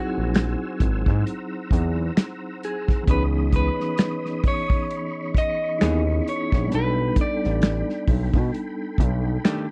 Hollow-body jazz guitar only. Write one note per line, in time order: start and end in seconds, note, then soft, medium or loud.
5.81 6.02 E3 medium
5.81 6.02 B3 medium
5.81 6.02 D#4 medium
5.81 6.02 G#4 medium
9.45 9.66 D#3 medium
9.45 9.66 A3 medium
9.45 9.66 D4 medium
9.45 9.66 G4 medium